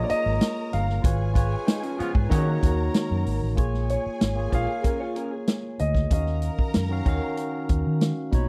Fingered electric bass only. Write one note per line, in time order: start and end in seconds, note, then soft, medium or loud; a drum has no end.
0.10 muted fingered electric bass stroke soft
0.26 0.38 G#1 medium
0.74 0.98 G1 medium
1.05 1.54 G#1 loud
2.00 muted fingered electric bass stroke soft
2.15 2.28 G#2 medium
2.32 2.56 D#3 loud
2.63 2.88 D#2 medium
3.11 3.23 F#2 medium
3.26 3.38 G#1 medium
3.42 3.54 A1 medium
3.58 3.95 A#1 medium
4.06 muted fingered electric bass stroke soft
4.22 4.46 G#1 medium
4.53 4.65 A#1 medium
5.80 6.05 D2 medium
6.11 6.48 D#2 loud
6.59 muted fingered electric bass stroke soft
6.76 7.00 F#2 medium
7.06 7.18 D#2 medium
7.70 7.82 D#2 medium
7.87 8.11 D#3 medium
8.33 8.49 B1 medium